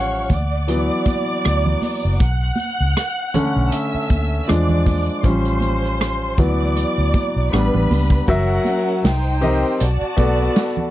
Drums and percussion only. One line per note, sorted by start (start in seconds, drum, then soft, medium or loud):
0.29 kick medium
0.29 closed hi-hat medium
0.29 muted conga soft
0.29 high conga soft
0.29 low conga medium
0.68 closed hi-hat medium
1.05 kick medium
1.05 closed hi-hat medium
1.05 high conga medium
1.44 cross-stick loud
1.44 closed hi-hat medium
1.44 muted conga soft
1.66 low conga medium
1.82 cross-stick soft
1.82 open hi-hat medium
1.82 muted conga soft
1.82 high conga medium
2.20 kick loud
2.20 closed hi-hat medium
2.56 closed hi-hat medium
2.56 muted conga soft
2.56 high conga medium
2.97 cross-stick loud
2.97 closed hi-hat medium
2.97 muted conga soft
3.34 closed hi-hat medium
3.34 muted conga soft
3.34 high conga soft
3.34 low conga medium
3.72 closed hi-hat medium
3.72 muted conga soft
4.10 kick medium
4.10 closed hi-hat medium
4.10 muted conga soft
4.10 high conga medium
4.48 cross-stick loud
4.48 closed hi-hat medium
4.48 muted conga soft
4.69 low conga medium
4.86 kick medium
4.86 cross-stick soft
4.86 open hi-hat medium
4.86 high conga medium
5.06 closed hi-hat soft
5.23 kick loud
5.23 closed hi-hat medium
5.23 muted conga soft
5.23 low conga medium
5.45 closed hi-hat medium
5.61 closed hi-hat medium
5.61 muted conga soft
5.61 high conga medium
5.84 cross-stick soft
6.01 cross-stick loud
6.01 closed hi-hat medium
6.01 muted conga soft
6.38 kick medium
6.38 closed hi-hat medium
6.38 muted conga soft
6.38 high conga soft
6.38 low conga medium
6.76 closed hi-hat medium
6.76 muted conga soft
7.14 kick medium
7.14 closed hi-hat medium
7.14 muted conga soft
7.14 high conga medium
7.53 cross-stick loud
7.53 closed hi-hat medium
7.53 muted conga soft
7.74 low conga medium
7.91 open hi-hat medium
7.91 muted conga soft
7.91 high conga medium
8.10 kick medium
8.28 kick loud
8.28 closed hi-hat medium
8.28 muted conga soft
8.28 low conga medium
8.65 closed hi-hat medium
8.65 muted conga soft
8.65 high conga medium
9.05 snare loud
9.05 closed hi-hat medium
9.42 closed hi-hat medium
9.42 low conga medium
9.80 closed hi-hat medium
9.80 muted conga soft
10.17 kick medium
10.17 closed hi-hat medium
10.17 high conga medium
10.56 snare loud
10.56 closed hi-hat medium
10.77 low conga medium